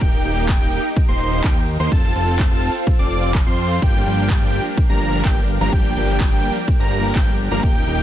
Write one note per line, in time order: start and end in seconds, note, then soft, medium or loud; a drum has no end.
0.00 0.23 D#1 loud
0.00 0.22 A#3 loud
0.00 1.90 D#4 medium
0.00 0.22 D#4 medium
0.00 1.90 G4 medium
0.00 0.22 G4 loud
0.00 1.88 A#4 medium
0.00 1.88 G5 medium
0.00 0.22 G5 loud
0.00 kick loud
0.00 closed hi-hat medium
0.00 ride medium
0.00 shaker soft
0.13 closed hi-hat soft
0.13 shaker soft
0.25 0.58 D#1 loud
0.25 0.58 A#3 medium
0.25 0.58 D#4 medium
0.25 0.58 G4 medium
0.25 0.58 G5 medium
0.25 open hi-hat loud
0.25 shaker medium
0.37 closed hi-hat medium
0.37 shaker soft
0.49 kick loud
0.49 clap loud
0.49 closed hi-hat medium
0.49 ride medium
0.49 shaker soft
0.61 0.79 D#1 loud
0.61 0.81 A#3 medium
0.61 0.81 D#4 medium
0.61 0.81 G4 medium
0.61 0.81 G5 loud
0.61 closed hi-hat soft
0.61 shaker soft
0.73 open hi-hat loud
0.73 shaker medium
0.85 closed hi-hat medium
0.85 shaker soft
0.96 kick loud
0.96 closed hi-hat medium
0.96 ride medium
0.96 shaker soft
1.08 1.42 D#1 loud
1.08 1.41 A#3 medium
1.08 1.41 D#4 medium
1.08 1.41 C5 medium
1.08 1.41 C6 medium
1.08 closed hi-hat soft
1.08 shaker soft
1.20 open hi-hat loud
1.20 shaker medium
1.32 open hi-hat medium
1.32 shaker soft
1.44 1.78 D#2 loud
1.44 1.57 A#3 medium
1.44 1.57 D#4 medium
1.44 1.57 G4 loud
1.44 1.57 G5 loud
1.44 kick loud
1.44 clap loud
1.44 closed hi-hat medium
1.44 ride medium
1.44 shaker soft
1.56 closed hi-hat soft
1.56 shaker soft
1.68 open hi-hat loud
1.68 shaker medium
1.80 1.89 D#2 loud
1.80 1.90 A#3 loud
1.80 1.90 D#4 medium
1.80 1.90 C5 loud
1.80 1.90 C6 loud
1.80 closed hi-hat medium
1.80 shaker soft
1.92 2.13 F1 loud
1.92 2.13 C4 loud
1.92 3.80 C4 medium
1.92 2.13 F4 medium
1.92 3.80 F4 medium
1.92 2.13 A4 loud
1.92 3.80 A4 medium
1.92 5.69 F5 medium
1.92 2.13 A5 loud
1.92 kick loud
1.92 closed hi-hat medium
1.92 ride medium
1.92 shaker soft
2.04 closed hi-hat soft
2.04 shaker soft
2.15 2.49 F1 loud
2.15 2.48 C4 medium
2.15 2.48 F4 medium
2.15 2.48 A4 medium
2.15 2.48 A5 medium
2.15 open hi-hat loud
2.15 shaker medium
2.28 closed hi-hat medium
2.28 shaker soft
2.39 kick loud
2.39 clap loud
2.39 closed hi-hat medium
2.39 ride medium
2.39 shaker soft
2.51 2.70 F1 loud
2.51 2.72 C4 medium
2.51 2.72 F4 medium
2.51 2.72 A4 medium
2.51 2.72 A5 medium
2.51 open hi-hat medium
2.51 shaker soft
2.63 open hi-hat loud
2.63 shaker medium
2.75 closed hi-hat medium
2.75 shaker soft
2.87 kick loud
2.87 closed hi-hat medium
2.87 ride medium
2.87 shaker soft
2.99 3.44 F1 loud
2.99 3.32 C4 medium
2.99 3.32 F4 medium
2.99 3.32 D5 medium
2.99 3.32 D6 medium
2.99 closed hi-hat soft
2.99 shaker soft
3.11 open hi-hat loud
3.11 shaker medium
3.23 closed hi-hat medium
3.23 shaker soft
3.35 kick loud
3.35 clap loud
3.35 closed hi-hat medium
3.35 ride medium
3.35 shaker soft
3.47 3.80 F2 loud
3.47 3.79 C4 medium
3.47 3.79 F4 medium
3.47 3.79 C5 medium
3.47 3.79 C6 medium
3.47 closed hi-hat soft
3.47 shaker soft
3.59 open hi-hat loud
3.59 shaker medium
3.71 closed hi-hat medium
3.71 shaker soft
3.82 4.04 G1 loud
3.82 4.03 F3 loud
3.82 4.03 G3 medium
3.82 4.03 A#3 medium
3.82 7.59 D4 medium
3.82 4.03 D4 medium
3.82 8.03 G4 medium
3.82 4.03 G4 loud
3.82 8.03 A#4 medium
3.82 4.03 G5 loud
3.82 kick loud
3.82 closed hi-hat medium
3.82 ride medium
3.82 shaker soft
3.94 closed hi-hat soft
3.94 shaker soft
4.06 4.39 G1 loud
4.06 4.39 F3 medium
4.06 4.39 G3 medium
4.06 4.39 A#3 medium
4.06 4.39 D4 medium
4.06 4.39 G4 medium
4.06 4.39 G5 medium
4.06 open hi-hat loud
4.06 shaker medium
4.18 closed hi-hat medium
4.18 shaker soft
4.30 kick loud
4.30 clap loud
4.30 closed hi-hat medium
4.30 ride medium
4.30 shaker soft
4.42 4.60 G1 loud
4.42 4.62 F3 medium
4.42 4.62 G3 medium
4.42 4.62 A#3 medium
4.42 4.62 D4 medium
4.42 4.62 G4 medium
4.42 4.62 G5 medium
4.42 closed hi-hat soft
4.42 shaker soft
4.54 open hi-hat loud
4.54 shaker medium
4.66 closed hi-hat medium
4.66 shaker soft
4.77 kick loud
4.77 closed hi-hat medium
4.77 ride medium
4.77 shaker soft
4.89 5.23 G1 loud
4.89 5.22 F3 medium
4.89 5.22 G3 medium
4.89 5.22 A#3 medium
4.89 5.22 D4 medium
4.89 5.22 A#4 medium
4.89 5.22 A#5 medium
4.89 closed hi-hat soft
4.89 shaker soft
5.01 open hi-hat loud
5.01 shaker medium
5.13 open hi-hat medium
5.13 shaker soft
5.25 5.58 G1 loud
5.25 5.38 F3 loud
5.25 5.38 G3 medium
5.25 5.38 A#3 medium
5.25 5.38 D4 medium
5.25 5.38 G4 loud
5.25 5.38 G5 loud
5.25 kick loud
5.25 clap loud
5.25 closed hi-hat medium
5.25 ride medium
5.25 shaker soft
5.37 closed hi-hat soft
5.37 shaker soft
5.49 open hi-hat loud
5.49 shaker medium
5.61 5.70 G1 loud
5.61 5.71 F3 loud
5.61 5.71 G3 medium
5.61 5.71 A#3 medium
5.61 5.71 D4 medium
5.61 5.71 A#4 loud
5.61 5.71 A#5 loud
5.61 closed hi-hat medium
5.61 shaker soft
5.73 5.94 G1 loud
5.73 5.94 F3 loud
5.73 5.94 G3 medium
5.73 5.94 A#3 medium
5.73 5.94 D4 medium
5.73 5.94 G4 loud
5.73 5.94 G5 loud
5.73 8.03 G5 medium
5.73 kick loud
5.73 closed hi-hat medium
5.73 ride medium
5.73 shaker soft
5.85 closed hi-hat soft
5.85 shaker soft
5.96 6.30 G1 loud
5.96 6.29 F3 medium
5.96 6.29 G3 medium
5.96 6.29 A#3 medium
5.96 6.29 D4 medium
5.96 6.29 G4 medium
5.96 6.29 G5 medium
5.96 open hi-hat loud
5.96 shaker medium
6.08 closed hi-hat medium
6.08 shaker soft
6.20 kick loud
6.20 clap loud
6.20 closed hi-hat medium
6.20 ride medium
6.20 shaker soft
6.32 6.50 G1 loud
6.32 6.53 F3 medium
6.32 6.53 G3 medium
6.32 6.53 A#3 medium
6.32 6.53 D4 medium
6.32 6.53 G4 medium
6.32 6.53 G5 medium
6.32 open hi-hat medium
6.32 shaker soft
6.44 open hi-hat loud
6.44 shaker medium
6.56 closed hi-hat medium
6.56 shaker soft
6.68 kick loud
6.68 closed hi-hat medium
6.68 ride medium
6.68 shaker soft
6.80 7.13 G1 loud
6.80 7.13 F3 medium
6.80 7.13 G3 medium
6.80 7.13 A#3 medium
6.80 7.13 D4 medium
6.80 7.13 A#4 medium
6.80 7.13 A#5 medium
6.80 closed hi-hat soft
6.80 shaker soft
6.92 open hi-hat loud
6.92 shaker medium
7.04 closed hi-hat medium
7.04 shaker soft
7.15 7.49 G1 loud
7.15 7.28 F3 medium
7.15 7.28 G3 medium
7.15 7.28 A#3 medium
7.15 7.28 D4 medium
7.15 7.28 G4 loud
7.15 7.28 G5 loud
7.15 kick loud
7.15 clap loud
7.15 closed hi-hat medium
7.15 ride medium
7.15 shaker soft
7.27 closed hi-hat soft
7.27 shaker soft
7.39 open hi-hat loud
7.39 shaker medium
7.51 7.61 G1 loud
7.51 7.61 F3 loud
7.51 7.61 G3 medium
7.51 7.61 A#3 medium
7.51 7.61 D4 medium
7.51 7.61 A#4 loud
7.51 7.61 A#5 loud
7.51 closed hi-hat medium
7.51 shaker soft
7.63 7.85 D#1 loud
7.63 7.84 A#3 loud
7.63 8.03 D#4 medium
7.63 7.84 D#4 medium
7.63 7.84 G4 loud
7.63 7.84 G5 loud
7.63 kick loud
7.63 closed hi-hat medium
7.63 ride medium
7.63 shaker soft
7.75 closed hi-hat soft
7.75 shaker soft
7.87 8.03 D#1 loud
7.87 8.03 A#3 medium
7.87 8.03 D#4 medium
7.87 8.03 G4 medium
7.87 8.03 G5 medium
7.87 open hi-hat loud
7.87 shaker medium
7.99 closed hi-hat medium
7.99 shaker soft